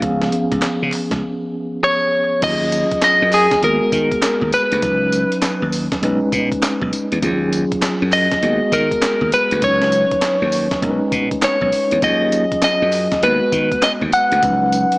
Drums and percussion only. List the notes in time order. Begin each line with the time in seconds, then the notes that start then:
0.02 kick, closed hi-hat
0.22 snare
0.32 closed hi-hat
0.52 kick, closed hi-hat
0.62 snare, clap, closed hi-hat
0.92 clap, open hi-hat
1.11 kick, snare, closed hi-hat
2.42 kick, closed hi-hat, crash, tambourine
2.72 closed hi-hat, tambourine
2.91 kick, closed hi-hat
3.02 snare, clap, closed hi-hat, tambourine
3.32 clap, open hi-hat, tambourine
3.51 kick, snare, closed hi-hat
3.63 closed hi-hat
3.92 kick, closed hi-hat, tambourine
4.12 kick, closed hi-hat
4.22 snare, clap, closed hi-hat, tambourine
4.42 kick
4.53 closed hi-hat, tambourine
4.72 closed hi-hat
4.82 kick, closed hi-hat, tambourine
5.12 closed hi-hat, tambourine
5.32 closed hi-hat
5.42 snare, clap, closed hi-hat, tambourine
5.72 open hi-hat, tambourine
5.92 kick, snare, closed hi-hat
6.03 closed hi-hat
6.32 kick, closed hi-hat, tambourine
6.52 kick, closed hi-hat
6.63 snare, clap, closed hi-hat, tambourine
6.82 kick
6.93 closed hi-hat, tambourine
7.12 closed hi-hat
7.23 kick, closed hi-hat, tambourine
7.53 closed hi-hat, tambourine
7.72 kick, closed hi-hat
7.82 snare, clap, closed hi-hat, tambourine
8.12 clap, open hi-hat, tambourine
8.31 kick, snare, closed hi-hat
8.43 closed hi-hat
8.72 kick, closed hi-hat, tambourine
8.91 kick, closed hi-hat
9.02 snare, clap, closed hi-hat, tambourine
9.21 kick
9.32 closed hi-hat, tambourine
9.51 closed hi-hat
9.62 kick, closed hi-hat, tambourine
9.82 snare
9.92 closed hi-hat, tambourine
10.11 kick, closed hi-hat
10.22 snare, clap, closed hi-hat, tambourine
10.52 open hi-hat, tambourine
10.71 kick, snare, closed hi-hat
10.82 kick, closed hi-hat
11.12 kick, closed hi-hat, tambourine
11.31 kick, closed hi-hat
11.42 snare, clap, closed hi-hat, tambourine
11.61 kick
11.72 open hi-hat, tambourine
11.91 closed hi-hat
12.02 kick, closed hi-hat, tambourine
12.32 closed hi-hat, tambourine
12.52 kick, closed hi-hat
12.62 snare, clap, closed hi-hat, tambourine
12.92 clap, open hi-hat, tambourine
13.12 kick, snare, closed hi-hat
13.23 closed hi-hat
13.52 kick, closed hi-hat, tambourine
13.72 kick, closed hi-hat
13.82 snare, clap, closed hi-hat, tambourine
14.01 kick
14.13 closed hi-hat, tambourine
14.32 closed hi-hat
14.43 kick, closed hi-hat, tambourine
14.72 closed hi-hat, tambourine
14.92 closed hi-hat